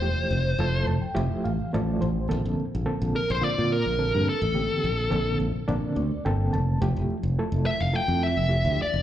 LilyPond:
<<
  \new Staff \with { instrumentName = "Lead electric guitar" } { \time 4/4 \key f \major \tempo 4 = 106 c''4. r2 r8 | r4. bes'16 c''16 d''8 bes'4 a'8~ | a'4. r2 r8 | r4. e''16 f''16 g''8 e''4 d''8 | }
  \new Staff \with { instrumentName = "Reed electric piano" } { \time 4/4 \key f \major <f a e' g'>8 r8 <f a e' a'>8 a''16 g''16 <f a e' g' e''>8 f''8 <f a e' a' d''>8 c''8 | <d bes c' a'>8 r8 <d bes c' a'>8 r8 <d bes c' f'>8 r8 <d bes c' a'>8 r8 | <d bes c' g'>8 r8 <d bes c' a'>8 r8 <d bes c' d'>8 d''8 <d bes c' a' g''>8 a''8 | <f a e' g'>8 r8 <f a e' a'>8 r8 <f a e' a'>8 r8 <f a e' g'>8 r8 | }
  \new Staff \with { instrumentName = "Fingered electric bass" } { \clef bass \time 4/4 \key f \major e,,16 r16 f,,8 f,,8 f,,16 r16 f,,16 r16 a,,16 r16 a,,8 a,,8 | bes,,16 bes,,16 r16 bes,,16 r16 bes,,16 r16 bes,,16 r16 bes,8 bes,,8 g,16 r16 a,,16~ | a,,16 r16 bes,,8 bes,,8 bes,,16 r16 bes,,16 r16 d,16 r16 g,,8 f,,8 | f,,16 f,,16 r16 f,,16 r16 f,,16 r16 f,,16 r16 f,8 f,,8 d,16 r16 e,,16 | }
>>